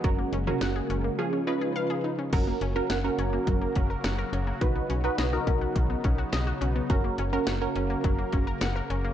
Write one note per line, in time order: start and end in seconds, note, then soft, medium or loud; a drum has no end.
0.00 1.15 F#3 medium
0.00 2.29 G#3 medium
0.00 1.14 F#4 medium
0.00 closed hi-hat medium
0.04 0.24 F#1 loud
0.04 2.31 C#3 medium
0.04 0.15 F#3 medium
0.04 1.17 A#3 medium
0.04 0.36 C#4 medium
0.04 0.36 F#4 medium
0.04 0.36 A#4 medium
0.04 kick loud
0.18 0.29 A#3 medium
0.33 0.53 F#1 loud
0.33 0.44 C#4 medium
0.33 closed hi-hat medium
0.47 1.17 C#4 medium
0.47 1.19 F#4 medium
0.47 0.58 G#4 medium
0.47 1.19 A#4 loud
0.47 mid tom medium
0.61 0.81 F#1 loud
0.61 0.72 F#5 loud
0.61 snare loud
0.61 closed hi-hat medium
0.76 0.87 G#4 medium
0.90 1.10 F#1 loud
0.90 1.01 C#4 medium
0.90 closed hi-hat medium
1.04 1.15 A#3 medium
1.19 1.29 F3 medium
1.19 2.32 F3 medium
1.19 1.41 C#4 medium
1.19 2.32 D#4 medium
1.19 2.32 F4 medium
1.19 1.41 F4 medium
1.19 1.41 G#4 loud
1.33 1.44 C#4 medium
1.47 2.10 C#4 medium
1.47 1.58 D#4 medium
1.47 2.10 F4 medium
1.47 2.10 B4 medium
1.61 1.72 G#4 medium
1.76 1.87 F5 loud
1.90 2.01 G#4 medium
2.04 2.15 D#4 medium
2.19 2.30 C#4 medium
2.33 2.53 F#1 loud
2.33 9.14 C#3 medium
2.33 9.14 F#3 medium
2.33 2.44 F#3 medium
2.33 4.59 A#3 medium
2.33 2.64 C#4 medium
2.33 9.14 F#4 medium
2.33 2.64 F#4 medium
2.33 4.59 A#4 medium
2.33 2.65 A#4 medium
2.33 kick loud
2.33 closed hi-hat medium
2.33 crash loud
2.47 2.58 A#3 medium
2.61 2.81 F#1 loud
2.61 2.72 C#4 medium
2.61 closed hi-hat medium
2.76 2.97 C#4 medium
2.76 2.97 F#4 medium
2.76 2.87 A#4 medium
2.76 2.97 A#4 loud
2.90 3.10 F#1 loud
2.90 3.01 F#5 medium
2.90 snare loud
2.90 closed hi-hat medium
3.04 3.89 C#4 medium
3.04 3.89 F#4 medium
3.04 3.89 A#4 loud
3.18 3.38 F#1 loud
3.18 3.30 C#4 medium
3.18 closed hi-hat medium
3.33 3.44 A#3 medium
3.47 3.67 F#1 loud
3.47 3.58 F#3 medium
3.47 kick medium
3.47 closed hi-hat medium
3.61 3.72 A#3 medium
3.75 3.96 F#1 loud
3.75 3.87 C#4 medium
3.75 kick medium
3.75 closed hi-hat medium
3.90 4.01 A#4 medium
4.04 4.24 F#1 loud
4.04 4.15 F#5 medium
4.04 snare loud
4.04 closed hi-hat medium
4.18 4.29 A#4 medium
4.33 4.53 F#1 loud
4.33 4.44 C#4 medium
4.33 closed hi-hat medium
4.47 4.58 A#3 medium
4.61 4.81 B1 loud
4.61 4.72 D#3 medium
4.61 6.88 B3 medium
4.61 6.88 D#4 medium
4.61 4.93 D#4 medium
4.61 4.93 F#4 medium
4.61 4.93 B4 loud
4.61 kick loud
4.61 closed hi-hat medium
4.75 4.86 B3 medium
4.90 5.10 B1 loud
4.90 5.01 C#4 medium
4.90 closed hi-hat medium
5.04 5.25 D#4 medium
5.04 5.15 F#4 medium
5.04 5.25 F#4 medium
5.04 5.25 B4 medium
5.18 5.38 B1 loud
5.18 5.29 D#5 medium
5.18 snare loud
5.18 closed hi-hat medium
5.33 6.17 D#4 medium
5.33 6.17 F#4 medium
5.33 6.17 A#4 loud
5.47 5.67 B1 loud
5.47 5.58 C#4 medium
5.47 kick loud
5.47 closed hi-hat medium
5.61 5.72 B3 medium
5.75 5.96 B1 loud
5.75 5.86 D#3 medium
5.75 kick medium
5.75 closed hi-hat medium
5.90 6.01 B3 medium
6.04 6.24 B1 loud
6.04 6.15 C#4 medium
6.04 kick medium
6.04 closed hi-hat medium
6.18 6.29 F#4 medium
6.33 6.53 B1 loud
6.33 6.44 D#5 medium
6.33 snare loud
6.33 closed hi-hat medium
6.47 6.58 F#4 medium
6.61 6.81 B1 medium
6.61 6.72 C#4 medium
6.61 closed hi-hat medium
6.75 6.86 B3 medium
6.90 7.10 F#1 loud
6.90 7.01 F#3 medium
6.90 9.14 A#3 medium
6.90 7.22 C#4 medium
6.90 7.22 F#4 medium
6.90 9.14 A#4 medium
6.90 7.21 A#4 loud
6.90 kick loud
6.90 closed hi-hat medium
7.04 7.15 A#3 medium
7.18 7.38 F#1 loud
7.18 7.29 C#4 medium
7.18 closed hi-hat medium
7.33 7.54 C#4 medium
7.33 7.54 F#4 medium
7.33 7.44 A#4 medium
7.33 7.54 A#4 loud
7.47 7.67 F#1 loud
7.47 7.58 F#5 medium
7.47 snare loud
7.47 closed hi-hat medium
7.61 8.46 C#4 medium
7.61 8.46 F#4 medium
7.61 8.46 A#4 loud
7.76 7.96 F#1 loud
7.76 7.87 C#4 medium
7.76 closed hi-hat medium
7.90 8.01 A#3 medium
8.04 8.24 F#1 loud
8.04 8.15 F#3 medium
8.04 kick loud
8.04 closed hi-hat medium
8.19 8.29 A#3 medium
8.33 8.53 F#1 loud
8.33 8.44 C#4 medium
8.33 kick medium
8.33 closed hi-hat medium
8.47 8.58 A#4 medium
8.61 8.81 F#1 loud
8.61 8.72 F#5 medium
8.61 snare loud
8.61 closed hi-hat medium
8.76 8.87 A#4 medium
8.90 9.10 F#1 loud
8.90 9.01 C#4 medium
8.90 closed hi-hat medium
9.04 9.14 A#3 medium